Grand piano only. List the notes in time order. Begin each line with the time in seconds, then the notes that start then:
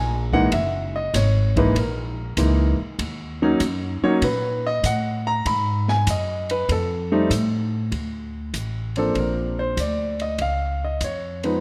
Already playing: G#5
0.33 E3 G#3 A#3 D#4 F#5
0.54 E5
0.96 D#5
1.15 C#5
1.57 E3 G#3 A#3 D#4 B4
1.77 A#4
2.38 E3 G#3 A#3 D#4
3.42 F#3 A#3 C#4 D#4
4.03 F#3 A#3 C#4 D#4 C#5
4.24 B4
4.67 D#5
4.86 F#5
5.27 A#5
5.47 B5
5.89 G#5
6.10 D#5
6.51 B4
6.72 A4
7.12 G3 A3 C4 D#4
8.97 F3 A#3 C4 D4 A4
9.19 A#4
9.59 C5
9.80 D5
10.22 D#5
10.42 F5
10.84 D#5
11.04 C#5
11.44 F3 G#3 B3 D#4 B4